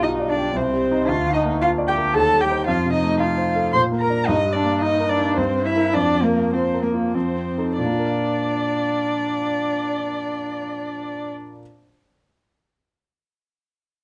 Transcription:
0.00 0.52 B1 medium
0.00 0.58 B2 soft
0.00 0.13 G3 soft
0.00 0.31 D#4 medium
0.00 0.30 F4 medium
0.00 0.11 D#5 medium
0.20 0.48 D5 medium
0.29 0.54 D4 medium
0.29 0.58 D5 medium
0.37 0.55 G4 medium
0.55 1.06 C2 medium
0.55 1.10 C4 medium
0.55 1.10 C5 medium
0.73 1.01 G3 soft
0.91 1.07 D#4 soft
0.91 1.07 D#5 medium
1.08 2.11 D2 medium
1.08 1.34 F4 medium
1.08 1.33 F5 medium
1.27 1.55 D3 soft
1.34 1.61 D#4 medium
1.34 1.42 D#5 medium
1.44 1.72 A#3 medium
1.61 1.89 F4 soft
1.61 1.70 F4 medium
1.61 1.70 F5 medium
1.78 2.07 D5 medium
1.88 2.16 G4 medium
1.88 1.96 G5 medium
1.97 2.14 A#4 soft
2.14 2.65 D#2 medium
2.14 2.42 A4 medium
2.14 2.42 A5 medium
2.32 2.60 G3 medium
2.41 2.67 G4 medium
2.41 2.66 G5 medium
2.50 2.66 D#4 medium
2.50 2.66 C5 medium
2.67 3.71 F2 medium
2.67 2.93 F4 medium
2.67 2.92 F5 medium
2.85 3.13 C3 soft
2.93 3.21 D#4 medium
2.93 3.19 D#5 medium
3.02 3.31 A3 soft
3.20 3.49 D#4 medium
3.20 3.74 F4 medium
3.20 3.72 F5 medium
3.38 3.67 C5 medium
3.56 3.74 A4 medium
3.73 4.26 A#2 medium
3.73 3.82 C5 loud
3.73 3.81 C6 medium
3.92 4.20 A#3 medium
4.00 4.27 A#4 medium
4.00 4.28 A#5 medium
4.10 4.26 D4 medium
4.10 4.26 A#4 soft
4.27 5.34 G2 medium
4.27 4.35 D#4 medium
4.27 4.55 D#5 medium
4.46 4.75 G3 soft
4.53 4.83 D4 medium
4.53 4.81 D5 medium
4.64 4.93 A#3 soft
4.81 5.11 D#4 soft
4.81 5.12 D#4 medium
4.81 5.11 D#5 medium
5.00 5.30 A#4 medium
5.09 5.39 D4 medium
5.09 5.36 D5 medium
5.18 5.37 D#4 medium
5.37 5.93 G2 medium
5.37 5.65 C4 medium
5.37 5.67 C5 medium
5.56 5.87 C4 medium
5.66 5.95 E4 medium
5.66 5.97 E5 medium
5.76 5.93 E4 soft
5.76 5.93 A#4 medium
5.94 7.11 F2 medium
5.94 6.24 D4 medium
5.94 6.25 D5 medium
6.14 6.45 F3 soft
6.23 6.55 A#3 medium
6.23 6.53 A#4 medium
6.34 6.65 A#3 soft
6.53 6.84 C4 medium
6.53 6.85 F4 soft
6.53 6.82 C5 medium
6.74 7.06 A#4 soft
6.83 7.16 A#3 medium
6.83 6.91 A#4 medium
6.94 7.14 F4 soft
7.14 7.77 F2 medium
7.14 7.79 C4 medium
7.14 7.77 C5 medium
7.36 7.70 C4 soft
7.58 7.77 D#4 soft
7.58 7.77 A4 soft
7.78 11.28 A#2 soft
7.78 11.29 D4 medium
7.78 11.29 D5 medium
7.85 11.35 A#3 soft
7.92 11.42 F4 soft
7.99 11.49 A#4 soft
8.06 11.56 F5 soft

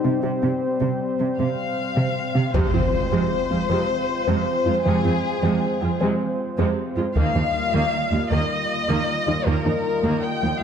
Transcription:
0.00 2.55 G3 medium
0.00 2.51 C4 medium
0.00 0.24 D#4 medium
0.00 2.55 G4 medium
0.00 2.51 C5 medium
0.04 0.12 C3 soft
0.04 0.16 C4 medium
0.22 0.31 C3 soft
0.22 0.35 C3 medium
0.22 1.36 C4 medium
0.43 0.50 C3 soft
0.43 0.55 C4 medium
0.81 0.89 C3 soft
0.81 0.93 C3 medium
1.20 1.27 C3 soft
1.20 1.32 G3 soft
1.39 1.47 C3 soft
1.39 1.51 C3 medium
1.39 2.50 F5 medium
1.96 2.04 C3 soft
1.96 2.09 C3 medium
2.35 2.43 C3 soft
2.35 2.47 C4 soft
2.54 2.62 F2 soft
2.54 2.72 C3 medium
2.54 2.66 F3 medium
2.54 2.72 G#3 medium
2.54 7.12 G#3 medium
2.54 7.12 C4 medium
2.54 7.12 F4 medium
2.54 4.81 C5 medium
2.54 7.12 C5 medium
2.54 taiko soft
2.54 impact soft
2.74 2.82 F2 soft
2.74 2.82 F3 soft
2.74 2.82 C4 soft
2.74 2.85 F4 medium
3.12 3.20 F2 soft
3.12 3.30 C3 soft
3.12 3.24 F3 medium
3.12 3.30 G#3 medium
3.50 3.58 F2 soft
3.50 3.59 G#3 soft
3.50 3.62 C4 soft
3.50 3.59 F4 soft
3.70 3.78 F2 medium
3.70 3.88 C3 soft
3.70 3.81 F3 medium
3.70 3.88 G#3 soft
4.28 4.35 F2 soft
4.28 4.46 C3 soft
4.28 4.39 F3 medium
4.28 4.46 G#3 medium
4.66 4.73 F2 soft
4.66 4.74 G#3 soft
4.66 4.78 F4 medium
4.66 4.74 F4 soft
4.85 4.93 F2 medium
4.85 5.04 C3 medium
4.85 4.97 F3 medium
4.85 5.03 G#3 medium
4.85 5.99 G#4 medium
5.05 5.12 F2 soft
5.05 5.13 F3 soft
5.05 5.13 C4 soft
5.05 5.16 F4 medium
5.43 5.51 F2 medium
5.43 5.61 C3 medium
5.43 5.55 F3 medium
5.43 5.61 G#3 medium
5.82 5.89 F2 soft
5.82 5.90 G#3 soft
5.82 5.93 C4 medium
5.82 5.90 F4 soft
6.01 6.08 F2 medium
6.01 6.19 C3 medium
6.01 6.12 F3 medium
6.01 6.19 G#3 medium
6.58 6.66 F2 medium
6.58 6.77 C3 medium
6.58 6.70 F3 medium
6.58 6.77 G#3 medium
6.97 7.05 F2 soft
6.97 7.05 G#3 soft
6.97 7.05 F4 soft
6.97 7.09 F4 medium
7.16 7.24 D#2 medium
7.16 7.28 D#3 medium
7.16 7.34 D#3 medium
7.16 10.63 G3 medium
7.16 10.63 A#3 medium
7.16 7.34 A#3 medium
7.16 10.63 F4 medium
7.16 10.63 D#5 medium
7.16 8.28 F5 medium
7.16 taiko medium
7.35 7.43 D#2 soft
7.35 7.43 F3 soft
7.35 7.43 D#4 soft
7.35 7.47 D#4 medium
7.73 7.81 D#2 medium
7.73 7.92 D#3 medium
7.73 7.86 D#3 medium
7.73 7.92 A#3 medium
8.12 8.20 D#2 soft
8.12 8.20 G3 soft
8.12 8.24 A#3 soft
8.12 8.20 F4 soft
8.31 8.39 D#2 medium
8.31 8.49 D#3 soft
8.31 8.44 D#3 medium
8.31 8.49 A#3 soft
8.31 9.45 D#5 medium
8.89 8.97 D#2 soft
8.89 9.07 D#3 soft
8.89 9.01 D#3 medium
8.89 9.07 A#3 medium
9.27 9.35 D#2 soft
9.27 9.35 G3 soft
9.27 9.40 D#4 soft
9.27 9.35 F4 soft
9.46 9.54 D#2 soft
9.46 9.65 D#3 soft
9.46 9.59 D#3 medium
9.46 9.65 A#3 medium
9.46 10.24 A#4 medium
9.65 9.73 D#2 soft
9.65 9.73 F3 soft
9.65 9.73 D#4 soft
9.65 9.78 D#4 medium
10.04 10.12 D#2 soft
10.04 10.22 D#3 soft
10.04 10.16 D#3 medium
10.04 10.22 A#3 medium
10.24 10.62 G5 medium
10.43 10.51 D#2 soft
10.43 10.50 G3 soft
10.43 10.55 A#3 soft
10.43 10.50 F4 soft

